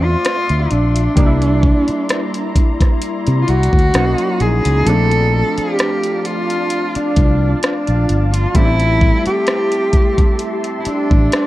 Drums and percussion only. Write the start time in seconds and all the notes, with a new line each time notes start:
0.25 cross-stick, closed hi-hat
0.49 closed hi-hat
0.71 closed hi-hat
0.96 closed hi-hat
1.17 kick, closed hi-hat
1.42 closed hi-hat
1.63 kick
1.88 closed hi-hat
2.09 cross-stick, closed hi-hat
2.34 closed hi-hat
2.55 kick, closed hi-hat
2.80 kick, cross-stick, closed hi-hat
3.01 closed hi-hat
3.26 closed hi-hat
3.48 closed hi-hat
3.63 closed hi-hat
3.73 kick
3.79 closed hi-hat
3.94 cross-stick, closed hi-hat
4.18 closed hi-hat
4.40 closed hi-hat
4.65 closed hi-hat
4.86 closed hi-hat
5.11 closed hi-hat
5.58 closed hi-hat
5.79 cross-stick, closed hi-hat
6.03 closed hi-hat
6.25 closed hi-hat
6.50 closed hi-hat
6.70 closed hi-hat
6.95 closed hi-hat
7.16 kick, closed hi-hat
7.63 cross-stick, closed hi-hat
7.87 closed hi-hat
8.09 closed hi-hat
8.34 closed hi-hat
8.55 kick, closed hi-hat
8.80 closed hi-hat
9.02 kick
9.26 closed hi-hat
9.47 cross-stick, closed hi-hat
9.72 closed hi-hat
9.93 kick, closed hi-hat
10.18 kick, closed hi-hat
10.39 closed hi-hat
10.64 closed hi-hat
10.85 closed hi-hat
11.11 kick
11.32 cross-stick, closed hi-hat